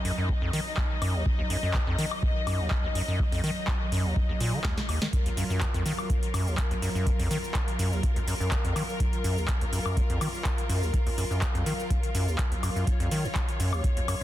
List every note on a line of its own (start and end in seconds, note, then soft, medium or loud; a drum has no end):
0.00 14.23 F#3 medium
0.00 5.09 D#4 medium
0.00 5.12 D#5 medium
0.05 0.12 F#2 medium
0.05 open hi-hat loud
0.18 0.31 F#2 medium
0.29 0.33 D#2 medium
0.29 kick loud
0.42 0.51 F2 loud
0.53 0.60 D#3 loud
0.53 open hi-hat loud
0.77 kick loud
0.77 clap loud
1.02 1.16 F#2 medium
1.02 open hi-hat loud
1.02 high woodblock medium
1.15 1.24 D#2 medium
1.26 kick loud
1.39 1.43 D#2 medium
1.50 1.57 F#2 medium
1.50 open hi-hat loud
1.63 1.76 F#2 medium
1.74 1.79 D#2 medium
1.74 kick medium
1.74 clap loud
1.87 1.97 F2 medium
1.99 2.06 D#3 loud
1.99 open hi-hat loud
2.11 high woodblock medium
2.23 kick loud
2.47 2.61 F#2 loud
2.47 open hi-hat loud
2.47 high woodblock medium
2.60 2.69 D#2 medium
2.71 kick loud
2.71 clap loud
2.84 2.88 D#2 medium
2.95 3.02 F#2 medium
2.95 open hi-hat loud
3.08 3.21 F#2 medium
3.19 3.24 D#2 medium
3.19 kick loud
3.32 3.42 F2 loud
3.32 open hi-hat medium
3.44 3.51 D#3 loud
3.44 open hi-hat medium
3.68 kick loud
3.68 clap loud
3.92 4.06 F#2 loud
3.92 open hi-hat loud
4.05 4.14 D#2 medium
4.16 kick loud
4.29 4.33 D#2 medium
4.40 4.55 A#2 loud
4.40 open hi-hat loud
4.53 4.60 D#3 medium
4.64 4.79 D#2 medium
4.64 kick medium
4.64 snare medium
4.64 clap loud
4.78 4.81 F#3 medium
4.78 snare medium
4.89 4.99 D#2 medium
4.89 open hi-hat loud
4.89 high woodblock medium
5.02 5.08 D#3 medium
5.02 snare medium
5.13 14.23 F4 medium
5.13 12.86 A#4 medium
5.13 kick loud
5.13 closed hi-hat medium
5.13 cabasa soft
5.26 5.30 D#2 medium
5.26 closed hi-hat medium
5.26 cabasa soft
5.37 5.44 F#2 medium
5.37 open hi-hat loud
5.37 cabasa medium
5.50 5.63 F#2 medium
5.50 cabasa soft
5.61 5.66 D#2 medium
5.61 kick loud
5.61 clap loud
5.61 closed hi-hat medium
5.61 cabasa soft
5.74 5.84 F2 loud
5.74 closed hi-hat medium
5.74 cabasa soft
5.86 5.93 D#3 loud
5.86 open hi-hat loud
5.86 cabasa medium
5.99 cabasa soft
5.99 high woodblock medium
6.10 kick loud
6.10 closed hi-hat medium
6.10 cabasa soft
6.23 closed hi-hat medium
6.23 cabasa soft
6.34 6.48 F#2 loud
6.34 open hi-hat loud
6.34 cabasa medium
6.34 high woodblock medium
6.47 6.56 D#2 medium
6.47 cabasa soft
6.58 kick loud
6.58 clap loud
6.58 closed hi-hat medium
6.58 cabasa soft
6.71 6.75 D#2 medium
6.71 closed hi-hat medium
6.71 cabasa soft
6.82 6.89 F#2 medium
6.82 open hi-hat loud
6.82 cabasa medium
6.95 7.08 F#2 medium
6.95 cabasa soft
7.07 7.11 D#2 medium
7.07 kick loud
7.07 closed hi-hat medium
7.07 cabasa soft
7.19 7.29 F2 loud
7.19 open hi-hat medium
7.19 cabasa soft
7.31 7.38 D#3 loud
7.31 open hi-hat loud
7.31 cabasa medium
7.44 cabasa soft
7.55 kick loud
7.55 clap loud
7.55 closed hi-hat medium
7.55 cabasa soft
7.68 closed hi-hat medium
7.68 cabasa soft
7.79 7.94 F#2 loud
7.79 open hi-hat loud
7.79 cabasa medium
7.92 8.01 D#2 medium
7.92 cabasa soft
8.03 kick loud
8.03 closed hi-hat medium
8.03 cabasa soft
8.16 8.20 D#2 medium
8.16 closed hi-hat soft
8.16 cabasa soft
8.28 8.35 F#2 medium
8.28 open hi-hat loud
8.28 cabasa medium
8.40 8.53 F#2 medium
8.40 cabasa soft
8.51 8.56 D#2 medium
8.51 kick loud
8.51 clap loud
8.51 closed hi-hat medium
8.51 cabasa soft
8.65 8.74 F2 loud
8.65 closed hi-hat medium
8.65 cabasa soft
8.76 8.83 D#3 medium
8.76 open hi-hat loud
8.76 cabasa medium
8.76 high woodblock medium
8.89 cabasa soft
9.00 kick loud
9.00 closed hi-hat medium
9.00 cabasa soft
9.13 closed hi-hat soft
9.13 cabasa soft
9.24 9.39 F#2 loud
9.24 open hi-hat loud
9.24 cabasa medium
9.37 9.47 D#2 medium
9.37 cabasa soft
9.48 kick loud
9.48 clap loud
9.48 closed hi-hat medium
9.48 cabasa soft
9.61 9.65 D#2 medium
9.61 closed hi-hat soft
9.61 cabasa soft
9.73 9.80 F#2 medium
9.73 open hi-hat loud
9.73 cabasa medium
9.86 9.98 F#2 medium
9.86 cabasa soft
9.86 high woodblock medium
9.97 10.01 D#2 medium
9.97 kick loud
9.97 closed hi-hat medium
9.97 cabasa soft
10.10 10.19 F2 loud
10.10 closed hi-hat medium
10.10 cabasa soft
10.21 10.28 D#3 loud
10.21 open hi-hat loud
10.21 cabasa medium
10.21 high woodblock medium
10.34 cabasa soft
10.45 kick loud
10.45 clap loud
10.45 closed hi-hat medium
10.45 cabasa soft
10.58 closed hi-hat medium
10.58 cabasa soft
10.69 10.84 F#2 loud
10.69 open hi-hat loud
10.69 cabasa medium
10.82 10.92 D#2 medium
10.82 cabasa soft
10.94 kick loud
10.94 closed hi-hat medium
10.94 cabasa soft
11.07 11.10 D#2 medium
11.07 open hi-hat medium
11.07 cabasa soft
11.18 11.25 F#2 medium
11.18 open hi-hat loud
11.18 cabasa medium
11.31 11.44 F#2 medium
11.31 cabasa soft
11.42 11.46 D#2 medium
11.42 kick loud
11.42 clap loud
11.42 closed hi-hat medium
11.42 cabasa soft
11.55 11.64 F2 loud
11.55 closed hi-hat soft
11.55 cabasa soft
11.66 11.73 D#3 loud
11.66 open hi-hat loud
11.66 cabasa medium
11.80 cabasa soft
11.90 kick loud
11.90 closed hi-hat medium
11.90 cabasa soft
12.03 closed hi-hat soft
12.03 cabasa soft
12.15 12.29 F#2 loud
12.15 open hi-hat loud
12.15 cabasa medium
12.28 12.37 D#2 medium
12.28 cabasa soft
12.39 kick loud
12.39 clap loud
12.39 closed hi-hat medium
12.39 cabasa soft
12.52 12.55 D#2 medium
12.52 closed hi-hat soft
12.52 cabasa soft
12.63 12.70 F#2 medium
12.63 open hi-hat loud
12.63 cabasa medium
12.63 high woodblock medium
12.76 12.85 F#2 medium
12.76 cabasa soft
12.87 14.23 C#5 medium
12.87 kick loud
12.87 closed hi-hat medium
12.87 cabasa soft
13.00 13.09 F2 loud
13.00 closed hi-hat soft
13.00 cabasa soft
13.11 13.26 D#3 loud
13.11 open hi-hat loud
13.11 cabasa medium
13.24 13.28 D#2 medium
13.24 cabasa soft
13.35 kick loud
13.35 clap loud
13.35 closed hi-hat medium
13.35 cabasa soft
13.49 closed hi-hat soft
13.49 cabasa soft
13.60 13.74 F#2 loud
13.60 open hi-hat loud
13.60 cabasa medium
13.73 13.82 D#2 medium
13.73 cabasa soft
13.73 high woodblock medium
13.84 kick loud
13.84 closed hi-hat medium
13.84 cabasa soft
13.97 14.01 D#2 medium
13.97 closed hi-hat soft
13.97 cabasa soft
14.08 14.15 F#2 medium
14.08 open hi-hat loud
14.08 cabasa medium
14.08 high woodblock medium